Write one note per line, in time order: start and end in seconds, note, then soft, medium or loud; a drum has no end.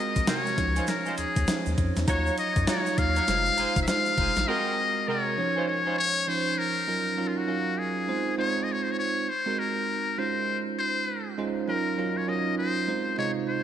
0.00 0.19 G#3 medium
0.00 0.19 C4 medium
0.00 0.19 F#4 medium
0.00 0.19 A#4 medium
0.00 0.24 D#5 loud
0.16 0.25 A#1 loud
0.16 kick loud
0.16 closed hi-hat medium
0.16 shaker medium
0.27 0.58 C3 medium
0.27 0.58 G#3 medium
0.27 0.43 C4 medium
0.27 0.44 F#4 medium
0.27 0.58 F#4 medium
0.27 0.44 G#4 medium
0.27 0.44 A#4 medium
0.27 0.58 A#4 medium
0.27 0.90 C#5 loud
0.27 snare loud
0.27 closed hi-hat medium
0.27 shaker medium
0.46 shaker medium
0.57 0.81 C#2 loud
0.57 1.33 F3 medium
0.57 1.33 C#4 medium
0.57 1.34 D#4 medium
0.57 1.34 C#5 medium
0.57 kick medium
0.57 closed hi-hat medium
0.76 0.86 C#4 medium
0.76 0.86 D#4 medium
0.76 0.86 F4 medium
0.76 0.86 C5 medium
0.76 closed hi-hat medium
0.76 shaker soft
0.87 1.18 A#4 medium
0.87 snare medium
0.87 closed hi-hat medium
0.87 shaker medium
1.06 1.16 C#4 medium
1.06 1.16 D#4 medium
1.06 1.16 F4 medium
1.06 1.16 C5 medium
1.06 shaker soft
1.18 1.26 D#2 soft
1.18 1.74 G#4 medium
1.18 closed hi-hat medium
1.18 shaker soft
1.36 1.45 D#2 medium
1.36 kick loud
1.36 closed hi-hat medium
1.36 shaker medium
1.47 1.99 F3 medium
1.47 1.99 C#4 medium
1.47 1.99 D#4 medium
1.47 1.99 C5 medium
1.47 snare medium
1.47 closed hi-hat medium
1.47 shaker medium
1.66 1.75 D#2 medium
1.66 shaker soft
1.78 1.92 F2 medium
1.78 kick medium
1.78 closed hi-hat medium
1.96 2.05 E2 medium
1.96 snare medium
1.96 closed hi-hat medium
1.96 shaker medium
2.07 2.30 D#2 loud
2.07 2.59 F#3 medium
2.07 2.36 D#4 loud
2.07 2.59 D#4 medium
2.07 2.36 F4 medium
2.07 2.59 F4 medium
2.07 2.36 F#4 medium
2.07 2.36 C#5 loud
2.07 2.59 C#5 medium
2.07 kick loud
2.07 closed hi-hat medium
2.07 shaker medium
2.26 shaker soft
2.38 2.70 D#5 loud
2.38 closed hi-hat medium
2.38 shaker soft
2.56 2.65 F#2 medium
2.56 kick loud
2.56 closed hi-hat medium
2.56 shaker medium
2.67 3.19 F#3 medium
2.67 2.83 D#4 medium
2.67 3.19 D#4 medium
2.67 2.84 F4 medium
2.67 3.19 F4 medium
2.67 2.84 F#4 medium
2.67 2.84 C#5 medium
2.67 3.00 C#5 loud
2.67 3.19 C#5 medium
2.67 snare loud
2.67 closed hi-hat medium
2.67 shaker medium
2.86 shaker medium
2.98 3.21 D#2 loud
2.98 3.82 F5 loud
2.98 kick medium
2.98 closed hi-hat medium
3.16 3.26 D#4 medium
3.16 3.26 F4 medium
3.16 3.26 F#4 medium
3.16 3.26 C#5 medium
3.16 closed hi-hat medium
3.16 shaker soft
3.27 3.51 F1 loud
3.27 3.79 G#3 medium
3.27 3.79 D#4 medium
3.27 3.79 F4 medium
3.27 3.79 C5 medium
3.27 snare medium
3.27 closed hi-hat medium
3.27 shaker medium
3.46 shaker medium
3.58 3.66 F1 soft
3.58 3.73 D#4 medium
3.58 3.74 F4 medium
3.58 3.74 G#4 medium
3.58 3.74 C5 medium
3.58 closed hi-hat medium
3.58 shaker soft
3.76 3.85 F1 medium
3.76 kick loud
3.76 closed hi-hat medium
3.76 shaker medium
3.83 3.89 E5 medium
3.87 4.39 G#3 medium
3.87 4.39 D#4 medium
3.87 4.39 F4 medium
3.87 4.39 C5 medium
3.87 4.49 F5 loud
3.87 snare medium
3.87 closed hi-hat medium
3.87 shaker medium
4.06 shaker soft
4.18 4.32 F1 medium
4.18 4.33 D#4 medium
4.18 4.34 F4 medium
4.18 4.34 G#4 medium
4.18 4.34 C5 medium
4.18 kick medium
4.18 closed hi-hat medium
4.36 4.45 A1 medium
4.36 snare medium
4.36 closed hi-hat medium
4.36 shaker medium
4.47 4.99 G#3 medium
4.47 4.76 C4 loud
4.47 4.99 C4 medium
4.47 4.76 F#4 medium
4.47 4.99 F#4 medium
4.47 4.76 G#4 medium
4.47 4.76 A#4 loud
4.47 4.99 A#4 medium
4.47 5.09 D#5 loud
5.07 5.38 C3 medium
5.07 5.38 G#3 medium
5.07 5.23 C4 medium
5.07 5.24 F#4 medium
5.07 5.38 F#4 medium
5.07 5.24 G#4 medium
5.07 5.24 A#4 medium
5.07 5.38 A#4 medium
5.07 5.67 C#5 medium
5.37 6.13 F3 medium
5.37 6.13 C#4 medium
5.37 6.14 D#4 medium
5.37 6.14 C#5 medium
5.56 5.66 C#4 medium
5.56 5.66 D#4 medium
5.56 5.66 F4 medium
5.56 5.66 C5 medium
5.68 5.96 C#5 medium
5.86 5.96 C#4 medium
5.86 5.96 D#4 medium
5.86 5.96 F4 medium
5.86 5.96 C5 medium
5.98 6.30 C#5 loud
6.27 6.79 F3 medium
6.27 6.79 C#4 medium
6.27 6.79 D#4 medium
6.27 6.60 C5 loud
6.27 6.79 C5 medium
6.58 7.30 A#4 loud
6.87 7.13 F#3 medium
6.87 7.13 C#4 medium
6.87 7.13 D#4 medium
6.87 7.14 F4 medium
6.87 7.14 A#4 medium
7.17 7.43 F#3 medium
7.17 7.43 C#4 medium
7.17 7.43 D#4 medium
7.17 7.44 F4 medium
7.17 7.44 A#4 medium
7.28 7.39 F4 medium
7.37 7.80 F#4 medium
7.47 7.99 F#3 medium
7.47 7.99 C#4 medium
7.47 7.99 D#4 medium
7.47 7.99 A#4 medium
7.47 7.99 F5 medium
7.78 8.38 G#4 loud
8.08 8.33 G#3 medium
8.08 8.33 C4 medium
8.08 8.34 D#4 medium
8.08 8.34 F4 medium
8.08 8.34 C5 medium
8.38 9.24 G#3 medium
8.38 9.24 C4 medium
8.38 9.24 D#4 medium
8.38 9.24 F4 medium
8.38 9.24 C5 loud
8.38 8.65 C#5 loud
8.64 8.73 D#5 medium
8.72 8.85 C#5 medium
8.83 8.93 C5 medium
8.91 8.98 C#5 loud
8.99 9.31 C#5 loud
9.29 9.61 C5 loud
9.46 10.16 G#3 medium
9.46 10.16 C4 medium
9.46 10.16 D#4 medium
9.46 10.16 F#4 medium
9.46 10.16 A#4 medium
9.59 10.20 A#4 loud
10.18 11.16 G#3 medium
10.18 11.16 C#4 medium
10.18 11.16 D#4 medium
10.18 11.17 F4 medium
10.18 10.62 C5 loud
10.18 11.17 C5 medium
10.79 11.34 C5 loud
11.38 11.63 G#3 medium
11.38 11.63 C#4 medium
11.38 11.64 D#4 medium
11.38 11.64 F4 medium
11.38 11.64 C5 loud
11.68 11.93 F#3 medium
11.68 11.93 C#4 medium
11.68 11.94 D#4 medium
11.68 11.94 F4 medium
11.68 12.19 A#4 medium
11.68 11.94 A#4 medium
11.98 12.23 F#3 medium
11.98 12.23 C#4 medium
11.98 12.24 D#4 medium
11.98 12.24 F4 medium
11.98 12.24 A#4 medium
12.17 12.30 C#5 medium
12.28 12.79 F#3 medium
12.28 12.79 C#4 medium
12.28 12.79 D#4 medium
12.28 12.79 F4 medium
12.28 12.79 A#4 medium
12.28 12.58 D#5 medium
12.58 13.14 C5 loud
12.88 13.13 G#3 medium
12.88 13.13 C4 medium
12.88 13.14 D#4 medium
12.88 13.14 F4 medium
12.88 13.14 C5 medium
13.18 13.63 C3 medium
13.18 13.63 G#3 medium
13.18 13.63 D#4 medium
13.18 13.63 F4 medium
13.18 13.32 C#5 loud
13.18 13.63 D#5 medium
13.49 13.63 C5 loud